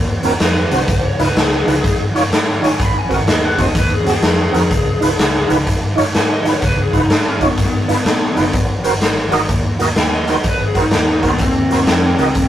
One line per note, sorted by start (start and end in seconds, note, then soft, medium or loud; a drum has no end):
0.00 0.18 D#2 medium
0.23 0.37 D#2 medium
0.23 0.32 C4 medium
0.23 0.32 F#4 medium
0.23 0.33 A#4 medium
0.23 snare soft
0.23 closed hi-hat medium
0.40 0.66 F2 medium
0.40 1.03 B4 loud
0.40 snare loud
0.40 closed hi-hat medium
0.71 0.85 C2 medium
0.71 0.80 C4 medium
0.71 0.80 F#4 medium
0.71 0.81 C5 medium
0.71 snare soft
0.71 closed hi-hat medium
0.88 1.14 C#2 medium
0.88 kick loud
0.88 snare soft
0.88 closed hi-hat medium
1.06 1.20 C#5 medium
1.19 1.33 C#2 medium
1.19 1.28 D#4 medium
1.19 1.28 F4 medium
1.19 1.28 B4 medium
1.19 snare soft
1.19 closed hi-hat medium
1.23 1.37 B4 medium
1.36 1.61 C#2 medium
1.36 1.52 G#4 medium
1.36 snare loud
1.36 closed hi-hat medium
1.54 1.99 G#4 medium
1.66 1.81 C#2 medium
1.66 1.75 D#4 medium
1.66 1.75 F4 medium
1.66 1.76 B4 medium
1.66 snare soft
1.66 closed hi-hat medium
1.84 2.10 G#2 loud
1.84 kick loud
1.84 snare soft
1.84 closed hi-hat medium
2.14 2.29 G#2 medium
2.14 2.23 D#4 medium
2.14 2.23 F4 medium
2.14 2.24 C#5 medium
2.14 snare soft
2.14 closed hi-hat medium
2.31 2.71 G#2 medium
2.31 snare loud
2.31 closed hi-hat medium
2.61 2.70 D#4 medium
2.61 2.71 F4 medium
2.61 2.71 C#5 medium
2.61 snare soft
2.61 closed hi-hat medium
2.66 2.80 G#5 loud
2.80 3.05 G#1 medium
2.80 kick loud
2.80 snare soft
2.80 closed hi-hat medium
2.84 2.97 B5 medium
2.99 3.14 G#5 medium
3.09 3.24 G#1 medium
3.09 3.18 C4 medium
3.09 3.18 F#4 medium
3.09 3.19 A#4 medium
3.09 kick medium
3.09 snare soft
3.09 closed hi-hat medium
3.14 3.28 F#5 medium
3.26 3.52 D#2 medium
3.26 3.45 D#5 loud
3.26 snare loud
3.26 closed hi-hat medium
3.45 3.60 F#5 medium
3.58 3.72 D#2 medium
3.58 3.66 C4 medium
3.58 3.67 F#4 medium
3.58 3.67 C5 medium
3.58 3.75 D#5 medium
3.58 kick medium
3.58 snare soft
3.58 closed hi-hat medium
3.75 4.01 D#2 loud
3.75 3.94 B4 medium
3.75 kick loud
3.75 snare soft
3.75 closed hi-hat medium
3.94 4.08 G#4 loud
4.04 4.20 D#2 medium
4.04 4.13 C4 medium
4.04 4.14 F#4 medium
4.04 4.14 G#4 medium
4.04 snare soft
4.04 closed hi-hat medium
4.10 5.48 G#4 loud
4.22 4.48 F2 medium
4.22 snare loud
4.22 closed hi-hat medium
4.52 4.68 F2 medium
4.52 4.61 C4 medium
4.52 4.62 F#4 medium
4.52 4.63 A#4 medium
4.52 snare soft
4.52 closed hi-hat medium
4.71 4.96 C#2 medium
4.71 kick loud
4.71 snare soft
4.71 closed hi-hat medium
5.01 5.16 C#2 medium
5.01 5.10 D#4 medium
5.01 5.10 F4 medium
5.01 5.11 B4 loud
5.01 snare soft
5.01 closed hi-hat medium
5.18 5.44 C#2 medium
5.18 snare loud
5.18 closed hi-hat medium
5.48 5.64 C#2 medium
5.48 5.57 D#4 medium
5.48 5.57 F4 medium
5.48 5.58 B4 medium
5.48 snare soft
5.48 closed hi-hat medium
5.67 5.92 G#2 loud
5.67 kick loud
5.67 snare soft
5.67 closed hi-hat medium
5.96 6.12 G#2 medium
5.96 6.05 D#4 medium
5.96 6.06 F4 medium
5.96 6.06 C#5 medium
5.96 snare soft
5.96 closed hi-hat medium
6.15 6.54 G#2 medium
6.15 6.31 G#5 loud
6.15 snare loud
6.15 closed hi-hat medium
6.33 6.47 D#5 medium
6.45 6.53 D#4 medium
6.45 6.54 F4 medium
6.45 6.54 B4 medium
6.45 snare soft
6.45 closed hi-hat medium
6.49 6.63 C#5 medium
6.62 6.88 C#2 medium
6.62 6.79 B4 loud
6.62 kick loud
6.62 snare soft
6.62 closed hi-hat medium
6.83 6.96 G#4 medium
6.92 7.07 C#2 medium
6.92 7.01 D#4 medium
6.92 7.01 F4 medium
6.92 7.02 B4 medium
6.92 kick medium
6.92 snare soft
6.92 closed hi-hat medium
6.97 7.11 D#4 medium
7.10 7.36 G#2 medium
7.10 7.27 D4 medium
7.10 snare loud
7.10 closed hi-hat medium
7.29 7.45 C#4 medium
7.41 7.55 G#2 medium
7.41 7.49 D#4 medium
7.41 7.50 F4 medium
7.41 7.50 C#5 medium
7.41 kick medium
7.41 snare soft
7.41 closed hi-hat medium
7.45 7.59 B3 medium
7.57 7.83 G#2 loud
7.57 kick loud
7.57 snare soft
7.57 closed hi-hat medium
7.63 8.53 B3 loud
7.88 8.03 G#2 medium
7.88 7.97 D#4 medium
7.88 7.97 F4 medium
7.88 7.98 B4 medium
7.88 snare soft
7.88 closed hi-hat medium
8.05 8.31 A#2 medium
8.05 snare loud
8.05 closed hi-hat medium
8.35 8.53 F#1 medium
8.35 8.44 D#4 medium
8.35 8.45 F4 medium
8.35 8.45 B4 medium
8.35 snare soft
8.35 closed hi-hat medium
8.53 8.79 G#1 medium
8.53 kick loud
8.53 snare soft
8.53 closed hi-hat medium
8.84 8.98 G#1 medium
8.84 8.93 F#4 medium
8.84 8.93 A#4 medium
8.84 8.94 C5 loud
8.84 snare soft
8.84 closed hi-hat medium
9.01 9.27 G#1 medium
9.01 snare loud
9.01 closed hi-hat medium
9.31 9.46 G#1 medium
9.31 9.40 F#4 medium
9.31 9.41 A#4 medium
9.31 9.41 D#5 loud
9.31 snare soft
9.31 closed hi-hat medium
9.49 9.75 D#2 medium
9.49 kick loud
9.49 snare soft
9.49 closed hi-hat medium
9.79 9.94 D#2 medium
9.79 9.88 F#4 medium
9.79 9.89 A#4 medium
9.79 9.89 D#5 medium
9.79 snare soft
9.79 closed hi-hat medium
9.96 10.37 D#2 medium
9.96 10.14 G#5 loud
9.96 snare loud
9.96 closed hi-hat medium
10.15 10.30 D#5 medium
10.27 10.36 F#4 medium
10.27 10.37 A#4 medium
10.27 10.37 C5 medium
10.27 snare soft
10.27 closed hi-hat medium
10.32 10.46 D#5 medium
10.43 10.70 G#1 medium
10.43 kick loud
10.43 snare soft
10.43 closed hi-hat medium
10.49 10.65 B4 loud
10.65 10.78 G#4 loud
10.74 10.89 G#1 medium
10.74 10.84 F#4 medium
10.74 10.84 A#4 medium
10.74 10.85 C5 medium
10.74 kick medium
10.74 snare soft
10.74 closed hi-hat medium
10.80 10.94 D#4 medium
10.91 11.19 D#2 medium
10.91 snare loud
10.91 closed hi-hat medium
10.95 11.09 D#4 loud
11.11 11.25 D#4 medium
11.23 11.37 D#2 medium
11.23 11.32 F#4 medium
11.23 11.32 A#4 medium
11.23 11.32 C5 medium
11.23 kick medium
11.23 snare soft
11.23 closed hi-hat medium
11.28 11.41 B3 loud
11.38 11.66 D#2 loud
11.38 12.48 C4 loud
11.38 kick loud
11.38 snare soft
11.38 closed hi-hat medium
11.70 11.86 D#2 medium
11.70 11.79 F#4 medium
11.70 11.80 A#4 medium
11.70 11.80 C5 medium
11.70 snare soft
11.70 closed hi-hat medium
11.87 12.14 F2 medium
11.87 snare loud
11.87 closed hi-hat medium
12.19 12.33 C#2 medium
12.19 12.28 F#4 medium
12.19 12.28 A#4 medium
12.19 12.29 D#5 medium
12.19 snare soft
12.19 closed hi-hat medium
12.35 12.48 D#2 medium
12.35 kick loud
12.35 snare soft
12.35 closed hi-hat loud